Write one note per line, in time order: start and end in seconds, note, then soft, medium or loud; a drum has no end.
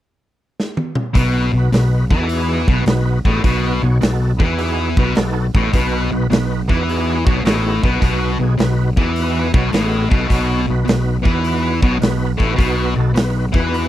0.60 snare medium
0.77 high tom medium
0.95 mid tom medium
1.14 1.51 B1 medium
1.14 1.52 B2 loud
1.14 1.46 B3 loud
1.14 1.47 D#4 medium
1.14 1.47 F#4 medium
1.14 1.47 B4 loud
1.14 kick loud
1.14 open hi-hat medium
1.53 1.71 B1 medium
1.53 1.68 B2 medium
1.57 1.71 B3 medium
1.57 1.71 D#4 medium
1.57 1.71 F#4 medium
1.57 1.72 B4 medium
1.72 2.08 B1 medium
1.72 2.03 B2 medium
1.72 2.04 B3 medium
1.72 2.05 D#4 medium
1.72 2.05 F#4 medium
1.72 2.06 B4 medium
1.72 snare loud
1.72 open hi-hat medium
2.11 2.64 E2 loud
2.11 2.67 E3 medium
2.11 2.28 B3 medium
2.11 2.28 D#4 medium
2.11 kick loud
2.15 2.29 F#4 medium
2.15 2.28 A4 medium
2.29 2.62 B3 medium
2.29 2.62 D#4 medium
2.29 2.63 F#4 medium
2.29 2.63 G#4 loud
2.29 open hi-hat medium
2.68 2.85 B1 loud
2.68 2.84 B2 loud
2.68 kick loud
2.72 2.85 B3 medium
2.72 2.86 D#4 loud
2.72 2.86 F#4 medium
2.72 2.86 B4 loud
2.86 3.23 B1 medium
2.86 3.17 B2 medium
2.86 3.18 B3 loud
2.86 3.19 D#4 medium
2.86 3.19 F#4 medium
2.86 snare loud
2.86 open hi-hat medium
2.90 3.20 B4 loud
3.25 3.42 A1 medium
3.25 3.43 A2 loud
3.25 3.41 B3 medium
3.25 3.41 D#4 medium
3.25 3.42 F#4 medium
3.25 3.41 G#4 loud
3.25 kick loud
3.43 3.80 B1 medium
3.43 3.81 B2 loud
3.43 3.75 B3 medium
3.43 3.75 D#4 medium
3.43 3.76 F#4 medium
3.43 3.76 B4 loud
3.43 kick loud
3.43 open hi-hat medium
3.82 4.00 B1 medium
3.82 3.98 B2 medium
3.82 3.97 B3 medium
3.82 3.97 D#4 medium
3.82 3.98 F#4 medium
3.82 3.98 C#5 medium
3.99 4.32 B2 medium
3.99 4.31 B3 medium
3.99 4.32 D#4 medium
3.99 4.33 F#4 medium
3.99 4.33 A4 medium
3.99 open hi-hat medium
4.03 4.38 B1 medium
4.03 snare loud
4.37 4.93 E2 loud
4.37 4.95 E3 medium
4.37 4.54 B3 medium
4.37 4.53 D#4 medium
4.37 4.55 F#4 medium
4.37 4.54 B4 medium
4.37 kick loud
4.57 4.89 B3 medium
4.57 4.89 D#4 medium
4.57 4.89 F#4 medium
4.57 4.90 G#4 loud
4.57 open hi-hat medium
4.97 5.14 B1 medium
4.97 5.16 B2 loud
4.97 5.12 B3 loud
4.97 5.13 D#4 loud
4.97 5.12 F#4 medium
4.97 5.13 B4 loud
4.97 kick loud
5.15 5.52 B1 medium
5.15 5.47 B2 medium
5.15 5.47 B3 loud
5.15 5.47 D#4 loud
5.15 5.47 F#4 medium
5.15 5.48 A4 loud
5.15 snare loud
5.15 open hi-hat medium
5.54 5.72 A1 medium
5.54 5.73 A2 loud
5.54 5.69 B3 medium
5.54 5.69 D#4 medium
5.54 5.70 F#4 medium
5.54 5.71 C#5 medium
5.54 kick loud
5.73 6.09 B1 medium
5.73 6.10 B2 loud
5.73 6.04 B3 loud
5.73 6.05 D#4 medium
5.73 6.05 F#4 medium
5.73 6.05 B4 loud
5.73 kick loud
5.73 open hi-hat medium
6.12 6.29 B1 medium
6.12 6.26 B2 medium
6.12 6.27 B3 medium
6.12 6.27 D#4 medium
6.12 6.27 F#4 medium
6.12 6.28 B4 medium
6.30 6.66 B1 medium
6.30 6.61 B2 medium
6.30 6.61 B3 medium
6.30 6.62 D#4 medium
6.30 6.62 F#4 medium
6.30 6.62 B4 medium
6.30 snare loud
6.30 open hi-hat medium
6.68 7.22 E2 medium
6.68 7.25 E3 loud
6.68 6.83 B3 medium
6.68 6.83 D#4 medium
6.68 6.84 F#4 medium
6.68 6.84 B4 medium
6.68 kick loud
6.87 7.18 B3 loud
6.87 7.18 D#4 medium
6.87 7.19 F#4 medium
6.87 7.19 G#4 loud
6.87 open hi-hat medium
7.24 7.44 B1 medium
7.24 7.44 B2 loud
7.24 7.40 B3 loud
7.24 7.40 D#4 medium
7.24 7.41 F#4 medium
7.24 7.41 C#5 loud
7.24 kick loud
7.44 7.80 A1 loud
7.44 7.82 A2 medium
7.44 7.76 B3 loud
7.44 7.77 D#4 medium
7.44 7.77 F#4 medium
7.44 7.77 G#4 loud
7.44 snare loud
7.44 open hi-hat medium
7.82 8.01 B1 medium
7.82 7.99 B2 medium
7.82 7.98 B3 medium
7.82 7.97 D#4 medium
7.82 7.98 F#4 medium
7.82 7.99 B4 medium
7.82 kick loud
8.00 8.37 B1 medium
8.00 8.38 B2 medium
8.00 8.32 B3 loud
8.00 8.32 D#4 medium
8.00 8.32 F#4 medium
8.00 8.32 B4 loud
8.00 kick medium
8.00 open hi-hat medium
8.39 8.57 B1 medium
8.39 8.55 B2 medium
8.39 8.54 B3 medium
8.39 8.55 D#4 medium
8.39 8.55 F#4 medium
8.39 8.56 G#4 medium
8.58 8.95 B1 medium
8.58 8.89 B2 medium
8.58 8.90 B3 medium
8.58 8.91 D#4 medium
8.58 8.91 F#4 medium
8.58 8.91 B4 medium
8.58 snare loud
8.58 open hi-hat medium
8.97 9.50 E2 medium
8.97 9.53 E3 medium
8.97 9.12 B3 medium
8.97 9.12 D#4 medium
8.97 9.13 F#4 medium
8.97 9.13 G#4 medium
8.97 kick loud
9.16 9.49 B3 medium
9.16 9.49 D#4 medium
9.16 9.49 F#4 medium
9.16 9.49 B4 medium
9.16 open hi-hat medium
9.53 9.71 B1 loud
9.53 9.72 B2 loud
9.53 9.70 B3 loud
9.53 9.70 D#4 loud
9.53 9.70 C#5 loud
9.53 kick loud
9.58 9.71 F#4 medium
9.72 10.09 A1 medium
9.72 10.09 A2 medium
9.72 10.05 B3 loud
9.72 10.05 D#4 medium
9.72 10.05 F#4 loud
9.72 10.05 G#4 loud
9.72 snare loud
9.72 open hi-hat medium
10.10 10.29 B1 medium
10.10 10.27 B2 loud
10.10 10.27 B3 medium
10.10 10.27 D#4 medium
10.10 kick loud
10.14 10.28 F#4 medium
10.14 10.28 A4 medium
10.28 10.66 B1 medium
10.28 10.66 B2 loud
10.28 10.61 B3 medium
10.28 10.61 D#4 medium
10.28 10.62 F#4 medium
10.28 kick loud
10.28 open hi-hat medium
10.32 10.62 C#5 loud
10.67 10.87 B1 medium
10.67 10.83 B2 medium
10.67 10.81 B3 medium
10.67 10.83 D#4 medium
10.67 10.82 F#4 medium
10.67 10.84 B4 medium
10.82 11.17 B2 medium
10.82 11.16 B3 medium
10.82 11.17 D#4 medium
10.82 11.16 F#4 medium
10.82 11.18 B4 medium
10.88 11.23 B1 medium
10.88 snare loud
10.88 open hi-hat soft
11.22 11.79 E2 medium
11.22 11.80 E3 medium
11.22 11.39 B3 medium
11.22 11.40 D#4 medium
11.22 11.40 F#4 medium
11.22 11.40 B4 medium
11.22 kick loud
11.41 11.74 B3 medium
11.41 11.74 D#4 medium
11.41 11.75 F#4 medium
11.41 11.74 B4 loud
11.41 open hi-hat medium
11.82 12.00 B1 loud
11.82 11.98 B2 loud
11.82 11.98 B3 loud
11.82 11.98 D#4 medium
11.82 11.99 F#4 loud
11.82 11.98 C#5 loud
11.82 kick loud
11.99 12.37 B1 medium
11.99 12.31 B2 medium
11.99 12.32 B3 medium
11.99 12.32 D#4 medium
11.99 12.32 F#4 loud
11.99 12.33 B4 loud
11.99 open hi-hat medium
12.03 snare loud
12.38 12.57 A1 medium
12.38 12.55 A2 medium
12.38 kick medium
12.43 12.56 B3 medium
12.43 12.56 D#4 medium
12.43 12.56 F#4 medium
12.43 12.57 B4 medium
12.56 12.94 B1 medium
12.56 12.94 B2 loud
12.56 12.89 B3 medium
12.56 12.90 D#4 medium
12.56 12.89 F#4 medium
12.56 12.90 B4 loud
12.56 kick loud
12.60 open hi-hat medium
12.96 13.15 B1 medium
12.96 13.11 B2 medium
12.96 13.11 B3 medium
12.96 13.11 D#4 medium
12.96 13.12 F#4 medium
12.96 13.12 A4 loud
13.12 13.46 B2 medium
13.12 13.45 B3 medium
13.12 13.46 D#4 medium
13.12 13.46 F#4 medium
13.12 13.46 B4 medium
13.12 open hi-hat medium
13.17 13.52 B1 medium
13.17 snare loud
13.52 13.88 E2 medium
13.52 13.88 E3 medium
13.52 13.68 B3 medium
13.52 13.69 D#4 medium
13.52 13.70 F#4 medium
13.52 13.69 B4 medium
13.52 kick loud
13.69 13.88 B3 medium
13.69 13.88 D#4 medium
13.69 13.88 F#4 medium
13.69 13.88 B4 loud
13.74 open hi-hat medium